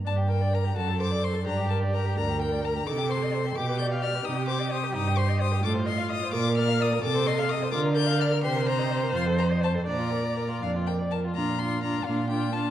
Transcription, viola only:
\new Staff \with { instrumentName = "Viola" } { \time 6/8 \key g \minor \tempo 4. = 85 r4. a'4. | g'4. bes'4. | a'4. g'4.~ | g'2. |
\key bes \major f'4. bes'4. | a'4. bes'4. | c''2. | d''2~ d''16 r8. |
d'8 d'8 d'8 d'8 d'8 d'8 | }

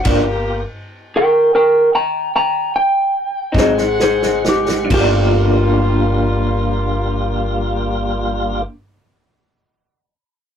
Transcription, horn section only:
\new Staff \with { instrumentName = "Horn section" } { \time 12/8 \key g \minor \tempo 4. = 42 <bes g'>4 r2. r8 <aes c' ges''>4. | <g bes f'>1. | }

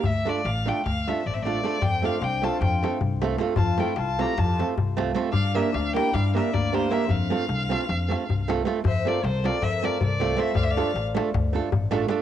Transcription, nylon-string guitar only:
\new Staff \with { instrumentName = "Nylon-string guitar" } { \time 9/8 \key f \major \tempo 4. = 103 r8 <a d' f' a'>8 r8 <a d' f' a'>8 r8 <a d' f' a'>8 r8 <a d' f' a'>8 <a d' f' a'>8 | r8 <a c' f' a'>8 r8 <a c' f' a'>8 r8 <a c' f' a'>8 r8 <a c' f' a'>8 <a c' f' a'>8 | r8 <a c' f' a'>8 r8 <a c' f' a'>8 r8 <a c' f' a'>8 r8 <a c' f' a'>8 <a c' f' a'>8 | r8 <bes d' g' bes'>8 r8 <bes d' g' bes'>8 r8 <bes d' g' bes'>8 r8 <bes d' g' bes'>8 <bes d' g' bes'>8 |
r8 <a c' f' a'>8 r8 <a c' f' a'>8 r8 <a c' f' a'>8 r8 <a c' f' a'>8 <a c' f' a'>8 | r8 <a c' f' a'>8 r8 <a c' f' a'>8 r8 <a c' f' a'>8 r8 <a c' f' a'>8 <a c' f' a'>8 | r8 <a d' f' a'>8 r8 <a d' f' a'>8 r8 <a d' f' a'>8 r8 <a d' f' a'>8 <a d' f' a'>8 | }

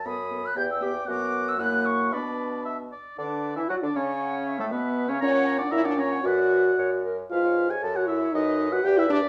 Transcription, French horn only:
\new Staff \with { instrumentName = "French horn" } { \time 2/4 \key b \minor \tempo 4 = 117 b8 b8 b8 b8 | b4 ais4 | b4. r8 | d'8. e'16 fis'16 d'16 cis'8~ |
cis'8. a16 b8. cis'16 | cis'8. d'16 e'16 d'16 cis'8 | fis'4. r8 | eis'8. gis'16 a'16 fis'16 e'8 |
dis'8. fis'16 g'16 e'16 d'8 | }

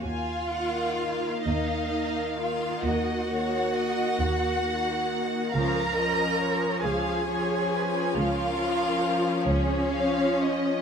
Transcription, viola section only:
\new Staff \with { instrumentName = "Viola section" } { \clef bass \time 12/8 \key ees \minor \tempo 4. = 45 r8 <ees bes>4. <ees bes>4. <ees bes>4. <ees bes>4 | <f des'>8 <f des'>4. <f des'>4. <f des'>4. <f des'>4 | }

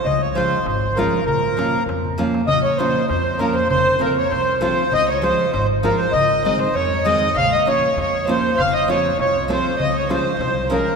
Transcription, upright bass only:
\new Staff \with { instrumentName = "Upright bass" } { \clef bass \time 2/4 \key bes \minor \tempo 4 = 99 des,4 aes,,4 | bes,,4 f,4 | bes,,4 f,4 | f,,4 c,4 |
des,4 aes,,4 | aes,,4 f,4 | bes,,4 f,4 | f,,4 c,4 |
des,4 c,4 | }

